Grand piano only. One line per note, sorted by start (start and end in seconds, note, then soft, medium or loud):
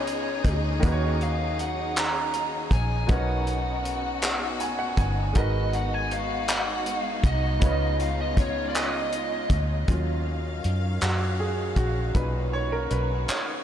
0.00 0.78 C#3 medium
0.00 0.78 C#4 medium
0.00 0.79 D#4 medium
0.00 0.80 F4 medium
0.00 0.81 B4 medium
0.79 3.03 D#3 medium
0.79 3.04 A#3 medium
0.79 3.05 D#4 medium
0.84 3.06 F#4 medium
0.84 0.91 B4 medium
0.92 3.10 C#5 medium
3.07 5.30 B2 medium
3.07 5.31 B3 medium
3.07 3.16 C#4 soft
3.11 5.33 A#4 medium
3.11 5.33 C#5 medium
3.17 5.32 D#4 medium
4.61 4.78 G#5 medium
4.79 4.96 F#5 medium
4.97 5.33 G#5 medium
5.33 7.57 G#3 medium
5.33 7.57 D#4 medium
5.33 7.58 F#4 medium
5.37 7.59 A#4 medium
5.37 7.59 B4 medium
7.59 9.83 C#3 medium
7.59 9.84 C#4 medium
7.59 9.84 F4 medium
7.64 9.85 B4 medium
7.64 7.70 C#5 medium
7.72 9.89 D#5 medium
9.88 10.97 F#3 soft
9.88 10.98 C#4 soft
9.88 10.98 F4 medium
11.02 11.41 F#4 medium
11.40 11.78 G#4 medium
11.77 12.16 F#4 medium
12.14 13.24 A#2 medium
12.14 13.24 C#4 soft
12.14 13.25 D#4 medium
12.14 12.54 B4 medium
12.53 12.72 C#5 loud
12.72 12.91 A#4 medium
12.91 13.29 B4 medium
13.29 13.64 C#5 medium